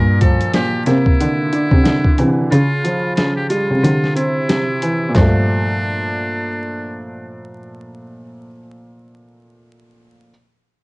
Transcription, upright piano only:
Already playing: A#2
0.21 F3
0.54 A#2
0.87 A#3
1.21 D3
1.53 D4
1.84 D3
2.19 E3
2.52 C#3
2.84 F3
3.18 C#3
3.50 G3
3.84 C3
4.16 C4
4.49 C3
4.83 E3
5.09 A#2
5.15 F3
5.21 A3

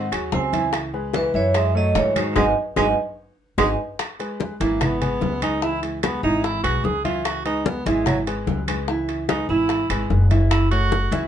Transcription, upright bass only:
0.12 D#2
0.32 C#2
1.34 F#2
1.95 G#2
2.36 G#1
2.76 G#1
3.58 G#1
4.60 G#1
5.21 C#2
6.23 G#1
6.64 B1
6.84 C#2
7.86 G#1
8.47 C#2
9.49 G#1
9.90 G#1
10.10 F#1
11.11 C#2

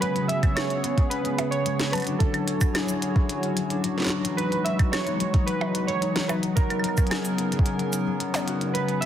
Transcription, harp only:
Already playing: B3 C#4 F#4
0.02 G#3
0.16 B3
0.29 G#3
0.43 C#4
0.57 G#3
0.84 B3
0.98 G#3
1.11 C#4
1.25 G#3
1.39 B3
1.66 G#3
1.79 B3
1.93 F#3
2.07 D4
2.21 F#3
2.48 C#4
2.61 F#3
2.75 D4
2.88 F#3
3.02 C#4
3.29 F#3
3.43 C#4
3.57 F#3
3.70 D4
3.84 F#3
4.11 B3
4.25 F#3
4.39 D#4
4.52 F#3
4.66 B3
4.93 F#3
5.07 B3
5.20 F#3
5.34 D#4
5.48 F#3
5.75 B3
5.89 F#3
6.02 D#4
6.16 F#3
6.29 B3
6.57 F#3
6.70 B3
6.84 F#3
6.98 C#4
7.11 F#3
7.39 B3
7.52 F#3
7.66 C#4
7.80 F#3
7.93 C#4
8.07 F#3
8.20 B3
8.34 C#4
8.48 F#4
8.61 C#4
8.75 G#3
9.02 B3

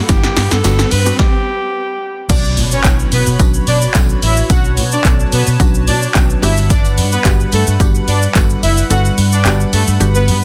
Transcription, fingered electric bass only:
0.09 G1
0.37 G2
0.52 G2
0.65 G1
0.92 G2
2.30 B1
2.58 B2
2.85 B1
3.12 B2
3.27 B2
3.40 B1
3.67 B2
3.95 B1
4.22 A1
4.50 B1
4.78 B2
5.05 B1
5.33 B2
5.47 B2
5.60 B1
5.88 B2
6.15 B1
6.43 G1
6.98 G2
7.25 G1
7.53 G2
7.67 G2
7.80 G1
8.08 G2
8.36 G1
8.63 F#1
8.90 G1
9.18 G2
9.45 G1
9.73 G2
9.88 G2
10.01 G1
10.28 G2

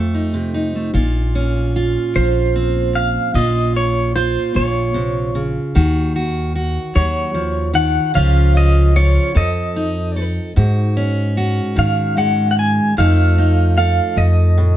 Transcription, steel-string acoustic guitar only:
Already playing: F2 A3 F4
0.14 D#4
0.34 C3
0.54 D#4
0.75 A3
0.94 A#2 F4
1.35 C#4
1.76 F4
2.15 F3
2.56 C4
3.34 A#2 F4
4.15 F4
4.54 A#2
4.94 C3
5.35 C#3
5.75 D#3 F#4
6.16 F#4
6.55 F#4
6.95 F#3
7.34 F3
7.73 D#3
8.14 C#3 F3 C#4 F4
8.55 C#4
8.96 F4
9.34 F2 A4
9.76 D#4
10.16 A4
10.56 G#2 F#4
10.97 C#4
11.37 F#4
11.76 D#3
12.17 G#3
12.97 F2 F3 A3 D#4 A4
13.38 D#4
13.78 A4
14.57 A2

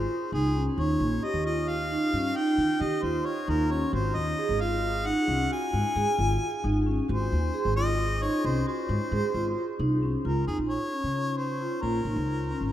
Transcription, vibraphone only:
Already playing: F4
0.33 D#4
0.55 C#4
0.77 D#4
1.23 G4
1.45 F4
1.91 D#4
2.13 C#4
2.36 D#4
2.81 G4
3.03 F4
3.48 D#4
3.70 C#4
3.93 F#4
4.38 G#4
4.61 F4
5.06 D#4
5.28 C#4
5.50 F#4
5.96 G#4
6.19 F4
6.64 D#4
6.87 C#4
7.08 F#4
7.54 G#4
7.77 F4
8.22 D#4
8.45 C#4
8.67 F#4
9.12 G#4
9.35 F4
9.80 D#4
10.03 C#4
10.25 F4
10.48 D#4
10.93 C#4
11.16 C#4
11.61 F4
11.84 F4
12.07 D#4
12.51 C#4

